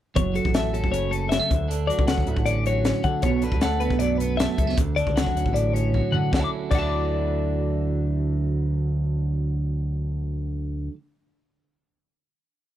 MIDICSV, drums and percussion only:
0, 0, Header, 1, 2, 480
1, 0, Start_track
1, 0, Key_signature, 2, "major"
1, 0, Tempo, 385356
1, 207, Time_signature, 4, 2, 24, 8
1, 15899, End_track
2, 0, Start_track
2, 0, Title_t, "Drums"
2, 201, Note_on_c, 9, 42, 75
2, 205, Note_on_c, 9, 36, 102
2, 326, Note_off_c, 9, 42, 0
2, 329, Note_off_c, 9, 36, 0
2, 439, Note_on_c, 9, 42, 56
2, 561, Note_on_c, 9, 36, 88
2, 564, Note_off_c, 9, 42, 0
2, 675, Note_on_c, 9, 42, 76
2, 681, Note_on_c, 9, 38, 98
2, 685, Note_off_c, 9, 36, 0
2, 800, Note_off_c, 9, 42, 0
2, 806, Note_off_c, 9, 38, 0
2, 925, Note_on_c, 9, 42, 56
2, 1042, Note_on_c, 9, 36, 74
2, 1050, Note_off_c, 9, 42, 0
2, 1166, Note_on_c, 9, 42, 81
2, 1167, Note_off_c, 9, 36, 0
2, 1291, Note_off_c, 9, 42, 0
2, 1402, Note_on_c, 9, 42, 55
2, 1527, Note_off_c, 9, 42, 0
2, 1637, Note_on_c, 9, 42, 74
2, 1643, Note_on_c, 9, 38, 87
2, 1762, Note_off_c, 9, 42, 0
2, 1768, Note_off_c, 9, 38, 0
2, 1878, Note_on_c, 9, 36, 92
2, 1883, Note_on_c, 9, 42, 52
2, 2003, Note_off_c, 9, 36, 0
2, 2008, Note_off_c, 9, 42, 0
2, 2127, Note_on_c, 9, 42, 80
2, 2251, Note_off_c, 9, 42, 0
2, 2367, Note_on_c, 9, 42, 55
2, 2475, Note_on_c, 9, 36, 85
2, 2491, Note_off_c, 9, 42, 0
2, 2586, Note_on_c, 9, 42, 76
2, 2593, Note_on_c, 9, 38, 102
2, 2599, Note_off_c, 9, 36, 0
2, 2709, Note_on_c, 9, 36, 65
2, 2711, Note_off_c, 9, 42, 0
2, 2717, Note_off_c, 9, 38, 0
2, 2824, Note_on_c, 9, 42, 53
2, 2834, Note_off_c, 9, 36, 0
2, 2946, Note_on_c, 9, 36, 78
2, 2948, Note_off_c, 9, 42, 0
2, 3066, Note_on_c, 9, 42, 82
2, 3071, Note_off_c, 9, 36, 0
2, 3190, Note_off_c, 9, 42, 0
2, 3309, Note_on_c, 9, 42, 52
2, 3434, Note_off_c, 9, 42, 0
2, 3546, Note_on_c, 9, 42, 70
2, 3552, Note_on_c, 9, 38, 89
2, 3670, Note_off_c, 9, 42, 0
2, 3677, Note_off_c, 9, 38, 0
2, 3781, Note_on_c, 9, 42, 45
2, 3787, Note_on_c, 9, 36, 68
2, 3905, Note_off_c, 9, 42, 0
2, 3911, Note_off_c, 9, 36, 0
2, 4013, Note_on_c, 9, 42, 78
2, 4024, Note_on_c, 9, 36, 102
2, 4138, Note_off_c, 9, 42, 0
2, 4148, Note_off_c, 9, 36, 0
2, 4257, Note_on_c, 9, 42, 55
2, 4381, Note_on_c, 9, 36, 82
2, 4382, Note_off_c, 9, 42, 0
2, 4498, Note_on_c, 9, 42, 71
2, 4504, Note_on_c, 9, 38, 94
2, 4506, Note_off_c, 9, 36, 0
2, 4623, Note_off_c, 9, 42, 0
2, 4629, Note_off_c, 9, 38, 0
2, 4739, Note_on_c, 9, 42, 54
2, 4863, Note_off_c, 9, 42, 0
2, 4864, Note_on_c, 9, 36, 84
2, 4980, Note_on_c, 9, 42, 82
2, 4988, Note_off_c, 9, 36, 0
2, 5104, Note_off_c, 9, 42, 0
2, 5235, Note_on_c, 9, 42, 61
2, 5360, Note_off_c, 9, 42, 0
2, 5477, Note_on_c, 9, 42, 78
2, 5483, Note_on_c, 9, 38, 107
2, 5601, Note_off_c, 9, 42, 0
2, 5607, Note_off_c, 9, 38, 0
2, 5708, Note_on_c, 9, 36, 78
2, 5708, Note_on_c, 9, 42, 56
2, 5832, Note_off_c, 9, 42, 0
2, 5833, Note_off_c, 9, 36, 0
2, 5846, Note_on_c, 9, 38, 32
2, 5948, Note_on_c, 9, 42, 84
2, 5949, Note_on_c, 9, 36, 103
2, 5971, Note_off_c, 9, 38, 0
2, 6072, Note_off_c, 9, 42, 0
2, 6074, Note_off_c, 9, 36, 0
2, 6195, Note_on_c, 9, 42, 58
2, 6312, Note_on_c, 9, 36, 77
2, 6319, Note_off_c, 9, 42, 0
2, 6437, Note_off_c, 9, 36, 0
2, 6440, Note_on_c, 9, 42, 70
2, 6446, Note_on_c, 9, 38, 102
2, 6558, Note_on_c, 9, 36, 60
2, 6564, Note_off_c, 9, 42, 0
2, 6570, Note_off_c, 9, 38, 0
2, 6683, Note_off_c, 9, 36, 0
2, 6687, Note_on_c, 9, 42, 61
2, 6797, Note_on_c, 9, 36, 75
2, 6811, Note_off_c, 9, 42, 0
2, 6922, Note_off_c, 9, 36, 0
2, 6922, Note_on_c, 9, 42, 83
2, 7047, Note_off_c, 9, 42, 0
2, 7173, Note_on_c, 9, 42, 59
2, 7297, Note_off_c, 9, 42, 0
2, 7401, Note_on_c, 9, 36, 51
2, 7525, Note_off_c, 9, 36, 0
2, 7653, Note_on_c, 9, 43, 66
2, 7778, Note_off_c, 9, 43, 0
2, 7883, Note_on_c, 9, 36, 110
2, 7900, Note_on_c, 9, 38, 86
2, 8007, Note_off_c, 9, 36, 0
2, 8025, Note_off_c, 9, 38, 0
2, 8363, Note_on_c, 9, 36, 100
2, 8367, Note_on_c, 9, 49, 74
2, 8488, Note_off_c, 9, 36, 0
2, 8492, Note_off_c, 9, 49, 0
2, 15899, End_track
0, 0, End_of_file